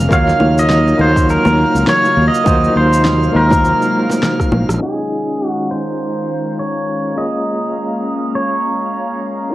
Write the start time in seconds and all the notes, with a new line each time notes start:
Already playing: C#3 A#3 C#4 F4 G#4 C5 F5 F6
0.09 D#2 F#3 A#3 D#4 F4 F#4 C#5, kick, cabasa
0.13 F5
0.28 snare, cabasa
0.40 D#2, high bongo
0.58 D#5, cabasa
0.70 snare, cabasa
0.87 cabasa
0.97 D#2 A#3 D#4 F4 F#4 C#5, high bongo
1.01 C5
1.16 kick, cabasa
1.29 A#4, cabasa
1.45 D#2, high bongo, cabasa
1.75 C#2, cabasa
1.87 C#5, snare, cabasa
2.04 high bongo, cabasa
2.17 D#2
2.28 D#5
2.34 cabasa
2.44 D#2 C3 G#3 A#3 D#4 F4 F#4 C5, kick, high bongo, cabasa
2.64 cabasa
2.76 D#2 C5
2.93 cabasa
3.04 snare, high bongo, cabasa
3.23 cabasa
3.32 D#2 A#3 D#4 F4 F#4 C5
3.36 A#4
3.51 kick, high bongo, cabasa
3.65 cabasa
3.82 cabasa
4.10 snare, high bongo, cabasa
4.23 cross-stick, snare, cabasa
4.40 kick, cross-stick, cabasa
4.52 A#1, high bongo
4.69 A#1, cross-stick, cabasa
4.79 D#3 G#3 C#4 D#4 F4 G#4 D#5 F5 A#5
5.47 F#4
5.71 C5
6.59 C#5
7.14 G#3 A#3 C#4 F4 G#4 C#5 D#5
8.35 C#5
9.50 C#3 F#3 A#3 D#4 F4